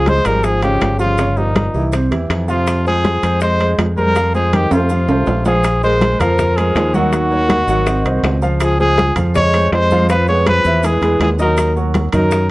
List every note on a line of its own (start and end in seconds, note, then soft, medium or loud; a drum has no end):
0.00 0.19 C#2 medium
0.00 0.10 F3 medium
0.00 0.18 F3 medium
0.00 0.18 F4 medium
0.00 0.11 G#4 medium
0.00 0.19 G#4 medium
0.06 0.28 G#3 medium
0.06 0.28 C5 loud
0.06 high bongo medium
0.06 high conga medium
0.06 high timbale medium
0.06 maracas soft
0.25 0.77 G#1 medium
0.25 0.56 F3 medium
0.25 0.47 G3 medium
0.25 0.56 F4 medium
0.25 0.56 G#4 medium
0.25 0.46 A#4 medium
0.25 high conga soft
0.25 high timbale medium
0.25 maracas medium
0.43 0.63 F3 medium
0.43 0.63 G#4 medium
0.43 high bongo medium
0.43 high conga soft
0.43 maracas medium
0.62 0.98 C#3 medium
0.62 0.93 F3 medium
0.62 0.93 G#3 medium
0.62 0.93 F4 medium
0.62 0.98 G4 medium
0.62 high conga soft
0.62 high timbale medium
0.62 maracas soft
0.80 1.69 G1 medium
0.80 high bongo medium
0.80 low bongo medium
0.80 high conga soft
0.80 high timbale medium
0.80 low timbale medium
0.80 maracas soft
0.99 1.40 C#3 medium
0.99 1.15 F3 medium
0.99 1.15 F4 medium
0.99 1.39 F4 medium
0.99 1.15 G4 medium
0.99 maracas medium
1.18 1.34 C#3 medium
1.18 1.34 C#4 medium
1.18 1.34 C#5 medium
1.18 high bongo medium
1.18 high conga soft
1.18 high timbale medium
1.18 maracas medium
1.37 1.94 A#2 medium
1.37 1.68 F3 medium
1.37 1.93 D#4 medium
1.37 1.68 F4 medium
1.37 1.68 G4 medium
1.37 high bongo soft
1.37 high conga soft
1.37 maracas soft
1.55 high bongo medium
1.55 high conga medium
1.55 high timbale medium
1.55 maracas soft
1.74 2.09 C2 medium
1.74 1.90 E3 medium
1.74 1.90 E4 medium
1.74 1.90 G4 medium
1.74 high bongo soft
1.74 high conga soft
1.74 maracas medium
1.92 2.08 C3 medium
1.92 2.08 C4 medium
1.92 2.08 C5 medium
1.92 high bongo medium
1.92 high conga soft
1.92 high timbale medium
1.92 maracas medium
2.11 2.29 E2 medium
2.11 2.42 E3 medium
2.11 2.42 E4 medium
2.11 2.42 G4 medium
2.11 high bongo soft
2.11 high conga soft
2.11 high timbale medium
2.11 maracas soft
2.30 3.17 F2 medium
2.30 high bongo medium
2.30 low bongo medium
2.30 high conga soft
2.30 high timbale medium
2.30 maracas soft
2.48 2.84 C3 medium
2.48 2.79 F3 medium
2.48 2.79 F4 medium
2.48 2.84 F4 medium
2.48 2.79 F5 medium
2.48 high conga soft
2.48 maracas medium
2.67 high bongo medium
2.67 high conga soft
2.67 high timbale medium
2.67 maracas medium
2.86 3.38 F3 medium
2.86 3.17 G#3 medium
2.86 3.17 G#4 medium
2.86 3.39 G#4 loud
2.86 3.17 C5 medium
2.86 high conga soft
2.86 maracas soft
3.04 high bongo medium
3.04 high conga loud
3.04 high timbale medium
3.04 maracas soft
3.23 3.75 F2 medium
3.23 3.53 G#3 medium
3.23 3.53 G#4 medium
3.23 3.54 C5 medium
3.23 high conga soft
3.23 high timbale medium
3.23 maracas medium
3.41 3.76 G#3 medium
3.41 3.76 C5 loud
3.41 high bongo medium
3.41 high conga soft
3.41 maracas medium
3.59 3.90 G#3 medium
3.59 3.91 G#4 medium
3.59 3.91 C5 medium
3.59 high conga soft
3.59 high timbale medium
3.59 maracas soft
3.78 4.66 F2 medium
3.78 high bongo medium
3.78 low bongo medium
3.78 high conga soft
3.78 high timbale medium
3.78 low timbale medium
3.78 maracas soft
3.97 4.32 G3 medium
3.97 4.12 G#3 medium
3.97 4.12 G#4 medium
3.97 4.32 A#4 loud
3.97 4.13 C5 medium
3.97 high conga medium
3.97 maracas medium
4.15 4.31 F3 medium
4.15 4.31 F4 medium
4.15 4.31 F5 medium
4.15 high bongo medium
4.15 high conga soft
4.15 high timbale medium
4.15 maracas medium
4.33 4.55 F3 medium
4.33 4.64 G#3 medium
4.33 4.65 G#4 medium
4.33 4.56 G#4 medium
4.33 4.65 C5 medium
4.33 high bongo medium
4.33 high conga soft
4.33 maracas soft
4.52 4.72 D#3 medium
4.52 4.74 G4 medium
4.52 low bongo loud
4.52 high conga medium
4.52 high timbale medium
4.52 maracas soft
4.71 5.06 F2 medium
4.71 5.45 C3 medium
4.71 4.87 A3 medium
4.71 5.46 F4 medium
4.71 4.87 A4 medium
4.71 4.87 C5 medium
4.71 high conga soft
4.71 high timbale medium
4.71 maracas medium
4.89 5.05 F3 medium
4.89 5.06 F4 medium
4.89 5.06 F5 medium
4.89 low bongo medium
4.89 high conga soft
4.89 maracas medium
5.08 5.26 C2 medium
5.08 5.40 A3 medium
5.08 5.40 A4 medium
5.08 5.40 C5 medium
5.08 low bongo medium
5.08 high conga soft
5.08 high timbale medium
5.08 maracas soft
5.26 6.14 A#1 medium
5.26 low bongo medium
5.26 high conga soft
5.26 low timbale medium
5.26 maracas soft
5.45 5.80 F3 medium
5.45 5.61 F3 medium
5.45 5.61 F4 medium
5.45 5.81 G#4 medium
5.45 5.62 F5 medium
5.45 low bongo medium
5.45 high conga soft
5.45 low timbale medium
5.45 maracas medium
5.64 high bongo medium
5.64 high conga soft
5.64 high timbale medium
5.64 maracas medium
5.83 6.13 G#3 medium
5.83 6.22 G#3 medium
5.83 6.14 G#4 medium
5.83 6.14 A#4 medium
5.83 6.21 C5 medium
5.83 high conga soft
5.83 maracas soft
6.01 high bongo medium
6.01 high conga medium
6.01 high timbale medium
6.01 maracas soft
6.20 6.72 F2 medium
6.20 6.51 F3 medium
6.20 6.59 F3 medium
6.20 6.51 F4 medium
6.20 6.58 A#4 medium
6.20 6.51 F5 medium
6.20 high conga soft
6.20 low conga medium
6.20 high timbale medium
6.20 maracas medium
6.38 high bongo medium
6.38 high conga soft
6.38 low conga medium
6.38 maracas medium
6.57 6.97 F3 medium
6.57 6.88 G#3 medium
6.57 6.96 G#4 medium
6.57 6.88 G#4 medium
6.57 6.88 A#4 medium
6.57 high conga soft
6.57 high timbale medium
6.57 maracas soft
6.75 7.62 D#2 loud
6.75 high bongo medium
6.75 low bongo medium
6.75 high conga soft
6.75 high timbale medium
6.75 low timbale medium
6.75 maracas soft
6.94 8.43 D#3 medium
6.94 7.10 F#3 medium
6.94 8.43 F#4 loud
6.94 7.10 F#4 medium
6.94 7.10 F#5 medium
6.94 high conga medium
6.94 maracas medium
7.13 7.29 F#3 medium
7.13 7.29 F#4 medium
7.13 7.29 F#5 medium
7.13 high bongo medium
7.13 high conga soft
7.13 high timbale medium
7.13 maracas medium
7.31 7.62 A#3 medium
7.31 7.62 A#4 medium
7.31 7.62 C#5 medium
7.31 high bongo soft
7.31 high conga soft
7.31 maracas soft
7.49 high bongo medium
7.49 high conga loud
7.49 high timbale medium
7.49 maracas soft
7.68 8.03 G#1 medium
7.68 7.84 F#3 medium
7.68 7.84 F#4 medium
7.68 7.84 F#5 medium
7.68 high bongo soft
7.68 high conga soft
7.68 maracas medium
7.87 8.02 C4 medium
7.87 8.02 C5 medium
7.87 8.03 D#5 medium
7.87 high bongo medium
7.87 high conga soft
7.87 high timbale medium
7.87 maracas medium
8.05 8.22 C2 medium
8.05 8.36 C4 medium
8.05 8.36 C5 medium
8.05 8.36 D#5 medium
8.05 high bongo soft
8.05 high conga soft
8.05 high timbale medium
8.05 maracas soft
8.23 9.11 C#2 medium
8.23 high bongo medium
8.23 low bongo medium
8.23 high conga soft
8.23 high timbale medium
8.23 low timbale medium
8.23 maracas soft
8.42 8.73 F3 medium
8.42 8.73 F4 medium
8.42 8.73 F5 medium
8.42 high conga soft
8.42 maracas medium
8.60 8.79 F3 medium
8.60 8.79 G#4 medium
8.60 high bongo medium
8.60 high conga soft
8.60 high timbale medium
8.60 maracas medium
8.80 9.14 F3 medium
8.80 9.10 G#3 medium
8.80 9.10 G#4 medium
8.80 9.15 G#4 loud
8.80 9.10 C5 medium
8.80 high conga soft
8.80 maracas soft
8.98 high bongo medium
8.98 high conga loud
8.98 high timbale medium
8.98 maracas soft
9.16 9.68 F2 medium
9.16 9.47 F3 medium
9.16 9.47 F4 medium
9.16 9.47 F5 medium
9.16 high conga soft
9.16 low conga medium
9.16 high timbale medium
9.16 maracas medium
9.35 9.70 G#3 medium
9.35 9.70 C#5 loud
9.35 high bongo medium
9.35 high conga soft
9.35 low conga medium
9.35 maracas medium
9.54 9.84 G#3 medium
9.54 9.84 G#4 medium
9.54 9.85 C5 medium
9.54 high conga soft
9.54 high timbale medium
9.54 maracas soft
9.72 10.59 F2 medium
9.72 10.07 G#3 medium
9.72 10.08 C5 loud
9.72 high bongo medium
9.72 low bongo medium
9.72 high conga soft
9.72 high timbale medium
9.72 low timbale medium
9.72 maracas soft
9.90 10.07 F3 medium
9.90 10.07 F4 medium
9.90 10.07 F5 medium
9.90 high conga medium
9.90 maracas medium
10.09 10.27 F3 medium
10.09 10.26 F3 medium
10.09 10.25 F4 medium
10.09 10.27 B4 medium
10.09 10.26 F5 medium
10.09 high bongo medium
10.09 high timbale medium
10.09 maracas medium
10.27 10.59 G#3 medium
10.27 10.46 B3 medium
10.27 10.59 G#4 medium
10.27 10.59 B4 medium
10.27 10.46 C#5 loud
10.27 high bongo soft
10.27 high conga soft
10.27 maracas soft
10.46 10.86 F3 medium
10.46 10.87 B4 loud
10.46 high bongo medium
10.46 high conga loud
10.46 high timbale loud
10.46 maracas soft
10.64 11.00 E2 medium
10.64 10.81 E3 medium
10.64 10.81 E4 medium
10.64 10.81 E5 medium
10.64 high bongo medium
10.64 high conga soft
10.64 maracas medium
10.83 11.21 E3 medium
10.83 11.00 G#3 medium
10.83 11.00 G#4 medium
10.83 11.22 G#4 medium
10.83 11.00 B4 medium
10.83 low bongo medium
10.83 high conga soft
10.83 high timbale medium
10.83 maracas medium
11.02 11.19 E2 medium
11.02 11.33 G#3 medium
11.02 11.34 G#4 medium
11.02 11.34 B4 medium
11.02 low bongo medium
11.02 high conga soft
11.02 high timbale medium
11.02 maracas soft
11.20 12.07 D#2 medium
11.20 11.30 E3 medium
11.20 11.30 G#4 medium
11.20 low bongo loud
11.20 high conga soft
11.20 high timbale medium
11.20 low timbale medium
11.20 maracas soft
11.39 11.70 D#3 medium
11.39 11.75 F#3 medium
11.39 11.70 D#4 medium
11.39 11.75 A#4 medium
11.39 11.70 D#5 medium
11.39 low bongo medium
11.39 high conga soft
11.39 maracas medium
11.57 high bongo medium
11.57 high conga soft
11.57 high timbale medium
11.57 maracas medium
11.76 12.07 F#3 medium
11.76 12.07 F#4 medium
11.76 12.07 A#4 medium
11.76 high conga soft
11.76 maracas soft
11.94 high bongo medium
11.94 high conga medium
11.94 high timbale medium
11.94 maracas soft
12.12 12.51 F#2 medium
12.12 12.44 D#3 medium
12.12 12.49 F#3 medium
12.12 12.44 D#4 medium
12.12 12.49 A#4 medium
12.12 12.44 D#5 medium
12.12 high conga soft
12.12 low conga medium
12.12 high timbale medium
12.12 maracas medium
12.31 high bongo medium
12.31 high conga soft
12.31 maracas medium